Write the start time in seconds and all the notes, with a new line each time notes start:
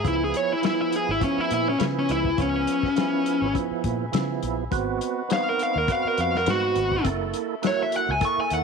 Already playing: E5
0.04 C#2 F3 B3 E4 G#4 B4 G#5, kick, closed hi-hat
0.24 G#4
0.34 C#5, closed hi-hat
0.53 E4
0.62 F3 B3 E4, snare, closed hi-hat
0.82 E4
0.92 G#4, closed hi-hat
1.09 G#1 E4
1.20 F3 B3 E4, kick, closed hi-hat
1.24 C#4
1.38 E4, muted fingered electric bass stroke
1.51 A#2 E4, closed hi-hat
1.69 C#4
1.79 C#3 F3 B3 E4, snare, closed hi-hat
1.99 C#4
2.09 C#2 E4, closed hi-hat
2.25 kick
2.37 C#2 F3 B3 C#4, kick, closed hi-hat
2.42 C#4
2.67 closed hi-hat
2.83 kick, snare
2.96 F3 B3 E4, snare, closed hi-hat
3.26 closed hi-hat
3.42 G#1
3.54 F3 B3 E4, kick, closed hi-hat
3.71 muted fingered electric bass stroke
3.84 A#2, kick, closed hi-hat
4.12 C#3 F3 B3 E4, snare, closed hi-hat
4.43 A#1, closed hi-hat
4.71 G#1 B3 C4 F#4 B4 D#5 F#5, kick, closed hi-hat
5.01 closed hi-hat
5.29 B3 C4 D#4, snare, closed hi-hat
5.33 F5
5.49 A#4
5.59 F5, closed hi-hat
5.76 D#2 A#4
5.87 B3 C4 F#4, kick, closed hi-hat
5.92 F5
6.05 A#4, muted fingered electric bass stroke
6.18 F2 F5, closed hi-hat
6.35 A#4, snare
6.45 G#2 B3 C4 F#4, snare, closed hi-hat
6.50 F#4
6.75 G#1, closed hi-hat
6.92 kick
7.03 F#1 A#3 E4 A4 E5, kick, closed hi-hat
7.34 closed hi-hat
7.62 A#3 E4 F#4, snare, closed hi-hat
7.67 C#5
7.83 E5
7.92 F#5, closed hi-hat
8.09 C#2 G#5
8.20 A#3 E4 A4, kick, closed hi-hat
8.25 C#6
8.38 G#5, muted fingered electric bass stroke
8.50 D#2 F#5, closed hi-hat